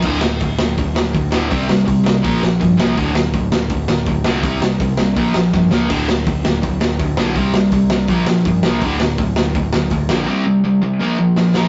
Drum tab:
CC |x-------|--------|--------|--------|
HH |--o-o-o-|o-o-o-o-|o-o-o-o-|o-o-o---|
SD |-o-o-o-o|-o-o-o-o|-o-o-o-o|-o-o-ooo|
BD |o-o-o-o-|o-o-o-o-|o-o-o-o-|o-o-o-o-|

CC |x-------|--------|--------|--------|
HH |o-o-o-o-|o-o-o-o-|o-o-o-o-|--------|
SD |-o-o-o-o|-o-o-o-o|-o-o-o-o|------oo|
BD |o-o-o-o-|o-o-o-o-|o-o-o-o-|--------|